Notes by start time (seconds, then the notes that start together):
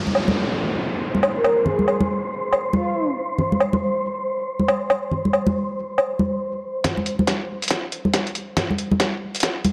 Already playing: C5, downlifter
0.07 high conga
0.15 low woodblock
0.28 high conga
1.15 high conga
1.23 low woodblock
1.36 A#4
1.44 low woodblock
1.66 G#4, low conga
1.79 high conga
1.88 low woodblock
2.01 high conga
2.53 low woodblock
2.73 F4, high conga
3.38 low conga
3.52 high conga
3.60 low woodblock
3.73 high conga
4.60 high conga
4.68 low woodblock
4.90 low woodblock
5.12 low conga
5.25 high conga
5.33 low woodblock
5.47 high conga
5.98 low woodblock
6.19 high conga
6.84 kick, snare, closed hi-hat, low conga
6.97 high conga
7.06 closed hi-hat
7.19 high conga
7.27 kick, snare, closed hi-hat
7.62 closed hi-hat
7.68 kick, snare, closed hi-hat
7.71 closed hi-hat
7.92 closed hi-hat
8.05 high conga
8.14 kick, snare, closed hi-hat
8.27 closed hi-hat
8.35 closed hi-hat
8.57 kick, snare, closed hi-hat, low conga
8.70 high conga
8.78 closed hi-hat
8.91 high conga
9.00 kick, snare, closed hi-hat
9.35 closed hi-hat
9.40 snare, closed hi-hat
9.43 kick, closed hi-hat
9.64 closed hi-hat, high conga